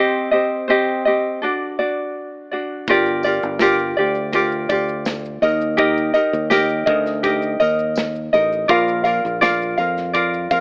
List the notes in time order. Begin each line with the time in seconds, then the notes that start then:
Already playing: C4 G4 C5 D#5
0.31 C4 G4 C5 D#5
0.68 C4 G4 C5 D#5
1.05 C4 G4 D#5
1.42 D4 F#4 A4 D5
1.79 D4 F#4 D5
2.51 D4 F#4 D5
2.87 G1 F4 G4 A#4 D5, kick, tambourine, shaker
3.06 shaker
3.23 F4 G4 A#4 D5, tambourine
3.43 G1, shaker
3.59 F4 G4 A#4 D5, snare, tambourine, shaker
3.79 shaker
3.97 D2 F4 G4 D5
4.15 shaker
4.33 F4 G4 A#4 D5, kick, tambourine, shaker
4.52 shaker
4.69 D2 F4 G4 D5, kick, tambourine
4.88 shaker
5.05 snare, tambourine, shaker
5.25 shaker
5.42 D#2 D#4 A#4 D#5, tambourine, shaker
5.61 shaker
5.77 D#4 G4 A#4 D#5, kick, shaker
5.97 shaker
6.14 D#4 G4 A#4 D#5, tambourine, shaker
6.33 D#2, shaker
6.50 D#4 G4 A#4 D#5, snare, tambourine, shaker
6.69 shaker
6.86 D2 D#4 A#4 D#5, kick, tambourine, shaker
7.06 snare, shaker
7.23 D#4 G4 A#4 D#5, kick, tambourine, shaker
7.42 shaker
7.60 D#2 D#4 A#4 D#5, tambourine, shaker
7.79 shaker
7.96 snare, tambourine, shaker
8.15 shaker
8.33 A1 D#4 A#4 D#5, tambourine, shaker
8.52 shaker
8.68 A#1 F4 A#4 D5 F5, kick, tambourine, shaker
8.88 shaker
9.04 F4 A#4 D5 F5, tambourine, shaker
9.25 A#1, shaker
9.41 F4 A#4 D5 F5, snare, tambourine, shaker
9.62 shaker
9.78 F2 F4 A#4 F5, tambourine
9.97 snare, shaker
10.13 F4 A#4 D5 F5, kick, tambourine, shaker
10.34 shaker
10.51 F2 F4 A#4 F5, kick, tambourine, shaker